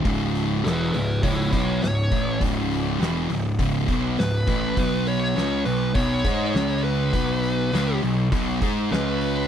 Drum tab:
HH |o-o-o-o-o-o-o-o-|o-o-o-o-o-o-o-o-|o-o-o-o-o-o-o-o-|o-o-o-o-o-o-o-o-|
SD |----o----o--o---|----o-------o---|----o-------o---|----o----o--o---|
BD |o-------o-o---o-|o-------o-o---o-|o-------o-o-----|o-------o-o-----|